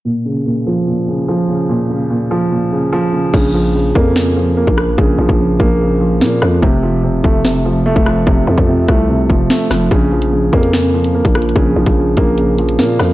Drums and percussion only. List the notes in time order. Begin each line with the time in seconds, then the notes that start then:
3.34 kick, crash
3.95 kick
4.16 snare
4.67 kick
4.78 cross-stick
4.98 kick
5.29 kick
5.60 kick
6.21 snare
6.42 cross-stick
6.63 kick
7.24 kick
7.45 snare
7.96 kick
8.06 cross-stick
8.27 kick
8.58 kick
8.88 kick, cross-stick
9.30 kick
9.50 snare
9.71 cross-stick, snare
9.91 kick, closed hi-hat
10.22 closed hi-hat
10.53 kick
10.63 closed hi-hat
10.73 snare, closed hi-hat
11.04 closed hi-hat
11.25 kick, closed hi-hat
11.35 cross-stick, closed hi-hat
11.42 closed hi-hat
11.49 closed hi-hat
11.56 kick, closed hi-hat
11.86 kick, closed hi-hat
12.17 kick, closed hi-hat
12.38 closed hi-hat
12.58 closed hi-hat
12.69 closed hi-hat
12.79 snare
13.00 cross-stick, open hi-hat